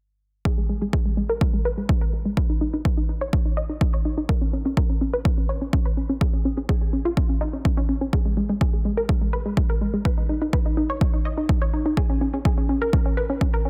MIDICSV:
0, 0, Header, 1, 3, 480
1, 0, Start_track
1, 0, Key_signature, 5, "minor"
1, 0, Tempo, 480000
1, 452, Time_signature, 4, 2, 24, 8
1, 13699, End_track
2, 0, Start_track
2, 0, Title_t, "Synth pluck"
2, 0, Program_c, 0, 84
2, 453, Note_on_c, 0, 68, 94
2, 533, Note_off_c, 0, 68, 0
2, 577, Note_on_c, 0, 56, 59
2, 652, Note_off_c, 0, 56, 0
2, 693, Note_on_c, 0, 56, 61
2, 773, Note_off_c, 0, 56, 0
2, 817, Note_on_c, 0, 56, 59
2, 892, Note_off_c, 0, 56, 0
2, 931, Note_on_c, 0, 68, 88
2, 1012, Note_off_c, 0, 68, 0
2, 1056, Note_on_c, 0, 56, 59
2, 1131, Note_off_c, 0, 56, 0
2, 1171, Note_on_c, 0, 56, 61
2, 1252, Note_off_c, 0, 56, 0
2, 1295, Note_on_c, 0, 70, 91
2, 1371, Note_off_c, 0, 70, 0
2, 1412, Note_on_c, 0, 56, 61
2, 1492, Note_off_c, 0, 56, 0
2, 1534, Note_on_c, 0, 56, 57
2, 1611, Note_off_c, 0, 56, 0
2, 1652, Note_on_c, 0, 71, 91
2, 1732, Note_off_c, 0, 71, 0
2, 1775, Note_on_c, 0, 56, 62
2, 1851, Note_off_c, 0, 56, 0
2, 1891, Note_on_c, 0, 56, 58
2, 1972, Note_off_c, 0, 56, 0
2, 2013, Note_on_c, 0, 70, 84
2, 2090, Note_off_c, 0, 70, 0
2, 2131, Note_on_c, 0, 56, 58
2, 2212, Note_off_c, 0, 56, 0
2, 2254, Note_on_c, 0, 56, 63
2, 2331, Note_off_c, 0, 56, 0
2, 2372, Note_on_c, 0, 71, 89
2, 2452, Note_off_c, 0, 71, 0
2, 2496, Note_on_c, 0, 63, 63
2, 2571, Note_off_c, 0, 63, 0
2, 2612, Note_on_c, 0, 63, 64
2, 2692, Note_off_c, 0, 63, 0
2, 2735, Note_on_c, 0, 63, 61
2, 2811, Note_off_c, 0, 63, 0
2, 2850, Note_on_c, 0, 71, 86
2, 2931, Note_off_c, 0, 71, 0
2, 2975, Note_on_c, 0, 63, 61
2, 3051, Note_off_c, 0, 63, 0
2, 3090, Note_on_c, 0, 63, 60
2, 3171, Note_off_c, 0, 63, 0
2, 3214, Note_on_c, 0, 73, 91
2, 3290, Note_off_c, 0, 73, 0
2, 3332, Note_on_c, 0, 63, 61
2, 3412, Note_off_c, 0, 63, 0
2, 3454, Note_on_c, 0, 63, 60
2, 3531, Note_off_c, 0, 63, 0
2, 3571, Note_on_c, 0, 75, 91
2, 3652, Note_off_c, 0, 75, 0
2, 3695, Note_on_c, 0, 63, 60
2, 3771, Note_off_c, 0, 63, 0
2, 3812, Note_on_c, 0, 63, 63
2, 3892, Note_off_c, 0, 63, 0
2, 3936, Note_on_c, 0, 73, 85
2, 4012, Note_off_c, 0, 73, 0
2, 4053, Note_on_c, 0, 63, 61
2, 4133, Note_off_c, 0, 63, 0
2, 4176, Note_on_c, 0, 63, 63
2, 4251, Note_off_c, 0, 63, 0
2, 4291, Note_on_c, 0, 70, 88
2, 4372, Note_off_c, 0, 70, 0
2, 4415, Note_on_c, 0, 61, 62
2, 4491, Note_off_c, 0, 61, 0
2, 4532, Note_on_c, 0, 61, 62
2, 4612, Note_off_c, 0, 61, 0
2, 4655, Note_on_c, 0, 61, 60
2, 4731, Note_off_c, 0, 61, 0
2, 4772, Note_on_c, 0, 70, 85
2, 4852, Note_off_c, 0, 70, 0
2, 4896, Note_on_c, 0, 61, 61
2, 4972, Note_off_c, 0, 61, 0
2, 5012, Note_on_c, 0, 61, 59
2, 5092, Note_off_c, 0, 61, 0
2, 5134, Note_on_c, 0, 71, 90
2, 5211, Note_off_c, 0, 71, 0
2, 5253, Note_on_c, 0, 61, 59
2, 5332, Note_off_c, 0, 61, 0
2, 5375, Note_on_c, 0, 61, 59
2, 5451, Note_off_c, 0, 61, 0
2, 5491, Note_on_c, 0, 73, 88
2, 5572, Note_off_c, 0, 73, 0
2, 5615, Note_on_c, 0, 61, 58
2, 5691, Note_off_c, 0, 61, 0
2, 5732, Note_on_c, 0, 61, 60
2, 5812, Note_off_c, 0, 61, 0
2, 5855, Note_on_c, 0, 71, 84
2, 5931, Note_off_c, 0, 71, 0
2, 5972, Note_on_c, 0, 61, 61
2, 6052, Note_off_c, 0, 61, 0
2, 6094, Note_on_c, 0, 61, 64
2, 6171, Note_off_c, 0, 61, 0
2, 6210, Note_on_c, 0, 68, 91
2, 6291, Note_off_c, 0, 68, 0
2, 6334, Note_on_c, 0, 61, 60
2, 6411, Note_off_c, 0, 61, 0
2, 6451, Note_on_c, 0, 61, 60
2, 6532, Note_off_c, 0, 61, 0
2, 6574, Note_on_c, 0, 61, 59
2, 6650, Note_off_c, 0, 61, 0
2, 6690, Note_on_c, 0, 68, 89
2, 6771, Note_off_c, 0, 68, 0
2, 6814, Note_on_c, 0, 61, 59
2, 6890, Note_off_c, 0, 61, 0
2, 6930, Note_on_c, 0, 61, 60
2, 7011, Note_off_c, 0, 61, 0
2, 7053, Note_on_c, 0, 65, 90
2, 7130, Note_off_c, 0, 65, 0
2, 7171, Note_on_c, 0, 61, 63
2, 7252, Note_off_c, 0, 61, 0
2, 7293, Note_on_c, 0, 61, 61
2, 7370, Note_off_c, 0, 61, 0
2, 7409, Note_on_c, 0, 63, 91
2, 7491, Note_off_c, 0, 63, 0
2, 7533, Note_on_c, 0, 61, 62
2, 7610, Note_off_c, 0, 61, 0
2, 7649, Note_on_c, 0, 61, 60
2, 7731, Note_off_c, 0, 61, 0
2, 7773, Note_on_c, 0, 61, 90
2, 7850, Note_off_c, 0, 61, 0
2, 7889, Note_on_c, 0, 61, 61
2, 7971, Note_off_c, 0, 61, 0
2, 8013, Note_on_c, 0, 61, 65
2, 8090, Note_off_c, 0, 61, 0
2, 8130, Note_on_c, 0, 68, 90
2, 8211, Note_off_c, 0, 68, 0
2, 8254, Note_on_c, 0, 56, 61
2, 8330, Note_off_c, 0, 56, 0
2, 8370, Note_on_c, 0, 56, 62
2, 8451, Note_off_c, 0, 56, 0
2, 8494, Note_on_c, 0, 56, 60
2, 8571, Note_off_c, 0, 56, 0
2, 8610, Note_on_c, 0, 68, 89
2, 8691, Note_off_c, 0, 68, 0
2, 8734, Note_on_c, 0, 56, 58
2, 8810, Note_off_c, 0, 56, 0
2, 8851, Note_on_c, 0, 56, 59
2, 8932, Note_off_c, 0, 56, 0
2, 8974, Note_on_c, 0, 70, 89
2, 9050, Note_off_c, 0, 70, 0
2, 9092, Note_on_c, 0, 56, 60
2, 9172, Note_off_c, 0, 56, 0
2, 9215, Note_on_c, 0, 56, 61
2, 9291, Note_off_c, 0, 56, 0
2, 9332, Note_on_c, 0, 71, 89
2, 9412, Note_off_c, 0, 71, 0
2, 9456, Note_on_c, 0, 56, 62
2, 9531, Note_off_c, 0, 56, 0
2, 9573, Note_on_c, 0, 56, 59
2, 9652, Note_off_c, 0, 56, 0
2, 9697, Note_on_c, 0, 70, 87
2, 9772, Note_off_c, 0, 70, 0
2, 9813, Note_on_c, 0, 56, 61
2, 9893, Note_off_c, 0, 56, 0
2, 9936, Note_on_c, 0, 56, 63
2, 10012, Note_off_c, 0, 56, 0
2, 10053, Note_on_c, 0, 71, 92
2, 10133, Note_off_c, 0, 71, 0
2, 10176, Note_on_c, 0, 63, 61
2, 10252, Note_off_c, 0, 63, 0
2, 10292, Note_on_c, 0, 63, 63
2, 10372, Note_off_c, 0, 63, 0
2, 10416, Note_on_c, 0, 63, 60
2, 10492, Note_off_c, 0, 63, 0
2, 10532, Note_on_c, 0, 71, 90
2, 10612, Note_off_c, 0, 71, 0
2, 10657, Note_on_c, 0, 63, 62
2, 10732, Note_off_c, 0, 63, 0
2, 10772, Note_on_c, 0, 63, 61
2, 10852, Note_off_c, 0, 63, 0
2, 10897, Note_on_c, 0, 73, 92
2, 10972, Note_off_c, 0, 73, 0
2, 11012, Note_on_c, 0, 63, 64
2, 11092, Note_off_c, 0, 63, 0
2, 11136, Note_on_c, 0, 63, 59
2, 11212, Note_off_c, 0, 63, 0
2, 11253, Note_on_c, 0, 75, 90
2, 11333, Note_off_c, 0, 75, 0
2, 11376, Note_on_c, 0, 63, 60
2, 11451, Note_off_c, 0, 63, 0
2, 11493, Note_on_c, 0, 63, 59
2, 11573, Note_off_c, 0, 63, 0
2, 11617, Note_on_c, 0, 73, 89
2, 11692, Note_off_c, 0, 73, 0
2, 11734, Note_on_c, 0, 63, 63
2, 11813, Note_off_c, 0, 63, 0
2, 11857, Note_on_c, 0, 63, 61
2, 11932, Note_off_c, 0, 63, 0
2, 11973, Note_on_c, 0, 68, 95
2, 12053, Note_off_c, 0, 68, 0
2, 12097, Note_on_c, 0, 61, 64
2, 12172, Note_off_c, 0, 61, 0
2, 12213, Note_on_c, 0, 61, 62
2, 12292, Note_off_c, 0, 61, 0
2, 12336, Note_on_c, 0, 61, 60
2, 12412, Note_off_c, 0, 61, 0
2, 12452, Note_on_c, 0, 68, 90
2, 12532, Note_off_c, 0, 68, 0
2, 12576, Note_on_c, 0, 61, 62
2, 12652, Note_off_c, 0, 61, 0
2, 12692, Note_on_c, 0, 61, 60
2, 12772, Note_off_c, 0, 61, 0
2, 12816, Note_on_c, 0, 70, 92
2, 12891, Note_off_c, 0, 70, 0
2, 12932, Note_on_c, 0, 61, 61
2, 13012, Note_off_c, 0, 61, 0
2, 13056, Note_on_c, 0, 61, 60
2, 13131, Note_off_c, 0, 61, 0
2, 13172, Note_on_c, 0, 71, 91
2, 13252, Note_off_c, 0, 71, 0
2, 13297, Note_on_c, 0, 61, 63
2, 13372, Note_off_c, 0, 61, 0
2, 13412, Note_on_c, 0, 61, 60
2, 13492, Note_off_c, 0, 61, 0
2, 13537, Note_on_c, 0, 70, 89
2, 13612, Note_off_c, 0, 70, 0
2, 13653, Note_on_c, 0, 61, 60
2, 13699, Note_off_c, 0, 61, 0
2, 13699, End_track
3, 0, Start_track
3, 0, Title_t, "Drums"
3, 452, Note_on_c, 9, 36, 108
3, 552, Note_off_c, 9, 36, 0
3, 932, Note_on_c, 9, 36, 96
3, 1032, Note_off_c, 9, 36, 0
3, 1412, Note_on_c, 9, 36, 106
3, 1512, Note_off_c, 9, 36, 0
3, 1892, Note_on_c, 9, 36, 96
3, 1992, Note_off_c, 9, 36, 0
3, 2371, Note_on_c, 9, 36, 115
3, 2471, Note_off_c, 9, 36, 0
3, 2851, Note_on_c, 9, 36, 96
3, 2951, Note_off_c, 9, 36, 0
3, 3331, Note_on_c, 9, 36, 112
3, 3431, Note_off_c, 9, 36, 0
3, 3811, Note_on_c, 9, 36, 99
3, 3911, Note_off_c, 9, 36, 0
3, 4291, Note_on_c, 9, 36, 115
3, 4391, Note_off_c, 9, 36, 0
3, 4771, Note_on_c, 9, 36, 97
3, 4871, Note_off_c, 9, 36, 0
3, 5251, Note_on_c, 9, 36, 116
3, 5351, Note_off_c, 9, 36, 0
3, 5731, Note_on_c, 9, 36, 101
3, 5831, Note_off_c, 9, 36, 0
3, 6211, Note_on_c, 9, 36, 111
3, 6311, Note_off_c, 9, 36, 0
3, 6691, Note_on_c, 9, 36, 96
3, 6791, Note_off_c, 9, 36, 0
3, 7171, Note_on_c, 9, 36, 113
3, 7271, Note_off_c, 9, 36, 0
3, 7651, Note_on_c, 9, 36, 101
3, 7751, Note_off_c, 9, 36, 0
3, 8131, Note_on_c, 9, 36, 114
3, 8231, Note_off_c, 9, 36, 0
3, 8611, Note_on_c, 9, 36, 96
3, 8711, Note_off_c, 9, 36, 0
3, 9091, Note_on_c, 9, 36, 105
3, 9191, Note_off_c, 9, 36, 0
3, 9571, Note_on_c, 9, 36, 98
3, 9671, Note_off_c, 9, 36, 0
3, 10051, Note_on_c, 9, 36, 109
3, 10151, Note_off_c, 9, 36, 0
3, 10532, Note_on_c, 9, 36, 93
3, 10632, Note_off_c, 9, 36, 0
3, 11012, Note_on_c, 9, 36, 105
3, 11112, Note_off_c, 9, 36, 0
3, 11492, Note_on_c, 9, 36, 95
3, 11592, Note_off_c, 9, 36, 0
3, 11972, Note_on_c, 9, 36, 107
3, 12072, Note_off_c, 9, 36, 0
3, 12452, Note_on_c, 9, 36, 91
3, 12552, Note_off_c, 9, 36, 0
3, 12932, Note_on_c, 9, 36, 102
3, 13032, Note_off_c, 9, 36, 0
3, 13412, Note_on_c, 9, 36, 91
3, 13512, Note_off_c, 9, 36, 0
3, 13699, End_track
0, 0, End_of_file